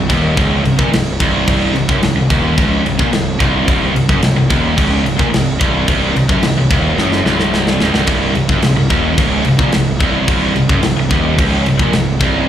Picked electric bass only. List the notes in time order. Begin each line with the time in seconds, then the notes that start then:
0.10 D#1
0.37 C#1
0.64 C1
0.79 A#1
0.93 C1
1.20 C1
1.48 C1
1.75 C1
1.88 F#1
2.02 C1
2.16 C1
2.30 D#1
2.57 C#1
2.84 C1
2.99 A#1
3.12 C1
3.40 C1
3.68 C1
3.96 C1
4.09 F#1
4.24 C1
4.37 C1
4.51 D#1
4.78 C#1
5.05 C1
5.19 A#1
5.33 C1
5.61 C1
5.88 C1
6.15 C1
6.29 F#1
6.42 C1
6.55 C1
6.70 D#1
6.97 F#1
7.24 C1
7.79 C#1
7.93 C1
8.07 C1
8.34 C1
8.49 F#1
8.62 C1
8.76 C1
8.90 D#1
9.18 C#1
9.47 C1
9.59 A#1
9.74 C1
10.01 C1
10.28 C1
10.57 C1
10.69 F#1
10.83 C1
10.97 C1
11.11 D#1
11.38 C#1
11.65 C1
11.79 A#1
11.92 C1
12.21 C1